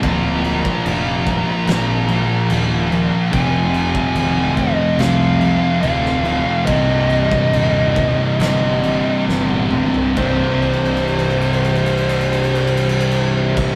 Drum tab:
CC |x---x---x---x---x---x---x---x---|x---x---x---x---x---x---x---x---|x---x---x---x---x---x-----------|x---x-x-x-x-x-x-x-x-x-x-x-x---x-|
RD |--------------------------------|--------------------------------|--------------------------------|-----x-x-x-x-x-x-x-x-x-x-x------|
SD |----------------o---------------|----------------o---------o-----|----------------o-------o-------|--------------------------------|
T1 |--------------------------------|--------------------------------|--------------------------o-----|--------------------------------|
T2 |--------------------------------|--------------------------------|----------------------------o---|--------------------------------|
FT |--------------------------------|--------------------------------|------------------------------o-|--------------------------------|
BD |o-----o-----o-------------------|o-----o-----o-------------------|o-----o-----o-------------------|o-----------------------------o-|